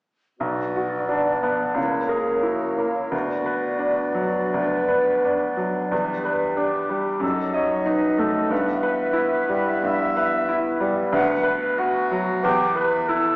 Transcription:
0.40 grand piano B1, french horn section B3 D4, bassoon B3, clarinet F#4, flute D5
0.76 grand piano F#4
1.08 grand piano D4, clarinet D4
1.43 grand piano B3
1.74 grand piano C#2, french horn section A#3 C#4, bassoon A#3, clarinet E4, flute C#5
2.09 clarinet G#4, grand piano A#4
2.43 grand piano E4, clarinet F#4
2.77 grand piano A#3, clarinet E4
3.11 grand piano D2, french horn section B3 D4, bassoon B3, clarinet F#4, flute D5
3.46 grand piano B4
3.79 grand piano D4
4.14 grand piano F#3, clarinet F#4
4.54 grand piano D2, clarinet B4
4.88 grand piano B4
5.24 grand piano D4
5.57 grand piano F#3
5.90 grand piano E2, french horn section G3, bassoon G3, clarinet B4
6.25 grand piano B4
6.57 grand piano D4, clarinet G4
6.89 grand piano G3
7.20 grand piano F#2, french horn section F#3 D#4, bassoon F#3, clarinet A4
7.24 flute D#5
7.54 clarinet C#5, grand piano D#5
7.86 grand piano D#4, clarinet B4
8.18 grand piano A3, clarinet A4
8.50 grand piano G2, bassoon B3, french horn section B3 E4, clarinet B4, flute E5
8.83 grand piano B4
9.13 grand piano E4
9.49 grand piano G3, clarinet B4
9.83 grand piano G2, clarinet E5
10.17 grand piano B4
10.49 grand piano E4
10.80 grand piano G3
11.12 grand piano D2, bassoon B3, french horn section B3 F#4, clarinet B4, flute F#5
11.43 grand piano B4
11.78 grand piano F#4, clarinet F#4
12.11 grand piano F#3
12.43 grand piano E2, bassoon B3, french horn section E4, clarinet G4, flute G5
12.76 grand piano B4, clarinet B4
13.08 grand piano E4, clarinet A4

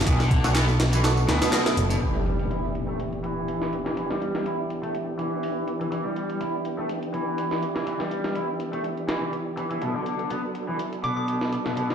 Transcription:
Already playing: tonewheel organ F#3 B3 D4 A4
0.01 snare, closed hi-hat
0.06 picked electric bass B1, overdriven electric guitar B2, kick, closed hi-hat, tambourine
0.20 overdriven electric guitar D3, snare, tambourine
0.31 kick, closed hi-hat
0.44 picked electric bass B1, synth stab D3 A3 B3 F#4, snare, tambourine
0.55 overdriven electric guitar B3, snare, clap, closed hi-hat, tambourine
0.68 tambourine
0.80 snare, closed hi-hat
0.93 overdriven electric guitar E3, closed hi-hat, tambourine
1.04 synth stab D3 A3 B3 F#4, snare, closed hi-hat, tambourine
1.17 tambourine
1.29 picked electric bass D2, overdriven electric guitar B2, snare, closed hi-hat
1.42 synth stab D3 A3 B3 F#4, snare, closed hi-hat, tambourine
1.53 snare, clap, closed hi-hat, tambourine
1.66 synth stab D3 A3 B3 E4, snare, closed hi-hat, tambourine
1.77 picked electric bass F#1, closed hi-hat
1.90 overdriven electric guitar B2, closed hi-hat, tambourine
2.02 overdriven electric guitar E3, tonewheel organ E3 B3 D4 G4, closed hi-hat, impact
2.15 overdriven electric guitar G3
2.26 closed hi-hat
2.39 closed hi-hat
2.51 overdriven electric guitar E4, closed hi-hat
2.75 closed hi-hat
2.88 overdriven electric guitar A3
3.00 closed hi-hat
3.13 closed hi-hat
3.24 overdriven electric guitar E3, closed hi-hat
3.48 closed hi-hat
3.62 snare
3.73 closed hi-hat
3.86 overdriven electric guitar E3, snare
3.97 overdriven electric guitar E3, closed hi-hat
4.10 overdriven electric guitar G3, snare
4.22 closed hi-hat
4.35 snare
4.46 overdriven electric guitar E4, closed hi-hat
4.70 closed hi-hat
4.83 overdriven electric guitar A3, closed hi-hat
4.95 closed hi-hat
5.19 overdriven electric guitar E3, closed hi-hat
5.43 open hi-hat
5.68 closed hi-hat
5.81 overdriven electric guitar E3, closed hi-hat
5.92 overdriven electric guitar E3, closed hi-hat
6.05 overdriven electric guitar G3
6.16 closed hi-hat
6.30 closed hi-hat
6.41 overdriven electric guitar E4, closed hi-hat
6.65 closed hi-hat
6.78 overdriven electric guitar A3
6.89 closed hi-hat
7.03 closed hi-hat
7.14 overdriven electric guitar E3, closed hi-hat
7.38 closed hi-hat
7.51 snare
7.62 closed hi-hat
7.76 overdriven electric guitar E3, snare
7.87 overdriven electric guitar E3, closed hi-hat
8.00 overdriven electric guitar G3, snare
8.11 closed hi-hat
8.24 snare
8.35 overdriven electric guitar E4, closed hi-hat
8.60 closed hi-hat
8.73 overdriven electric guitar A3, closed hi-hat
8.84 closed hi-hat
8.97 closed hi-hat
9.09 overdriven electric guitar E3, snare, closed hi-hat
9.22 overdriven electric guitar E3
9.33 closed hi-hat
9.57 overdriven electric guitar E3, closed hi-hat
9.71 overdriven electric guitar E3, closed hi-hat
9.82 overdriven electric guitar B2, tonewheel organ F#3 D4 A4, closed hi-hat
9.95 overdriven electric guitar D3
10.06 closed hi-hat
10.19 closed hi-hat
10.30 overdriven electric guitar B3, closed hi-hat
10.55 closed hi-hat
10.68 overdriven electric guitar E3
10.79 closed hi-hat
10.93 closed hi-hat
11.04 overdriven electric guitar B2, synth bell D6, closed hi-hat
11.17 synth bell D6
11.28 closed hi-hat
11.41 snare
11.53 closed hi-hat
11.66 overdriven electric guitar B2, snare
11.77 overdriven electric guitar B2, closed hi-hat
11.90 overdriven electric guitar D3, snare

